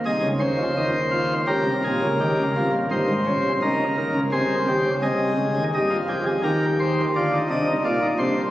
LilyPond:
<<
  \new Staff \with { instrumentName = "Pipe organ" } { \time 4/4 \key aes \major \tempo 4 = 85 << { ees''8 c''4. bes'2 | c''4 bes'4 c''4 ees''4 | ees''8 aes'8 bes'8 c''8 d''8 ees''8 d''8 c''8 | } \\ { aes'8 des'8 ees'8 f'8 g'8 aes'8 g'8 f'8 | ees'8 des'8 ees'8 bes'8 aes'8 g'8 aes'4 | ees'16 f'16 g'16 aes'16 g'4 f'16 ees'16 d'16 ees'16 f'16 ees'16 d'16 c'16 | } >> }
  \new Staff \with { instrumentName = "Pipe organ" } { \clef bass \time 4/4 \key aes \major <c, c>16 <des, des>16 <ees, ees>16 <f, f>16 <ees, ees>4 <des, des>16 <c, c>16 <bes,, bes,>16 <des, des>16 <ees, ees>16 <des, des>16 <c, c>16 <bes,, bes,>16 | <g,, g,>16 <aes,, aes,>16 <bes,, bes,>16 <c, c>16 <des, des>8 <ees, ees>16 <des, des>16 <c, c>8 <ees, ees>16 <des, des>16 <c, c>8 <des, des>16 <ees, ees>16 | <g, g>8 <f, f>8 <ees, ees>4 <d, d>8 <c, c>8 <bes,, bes,>8 <c, c>8 | }
>>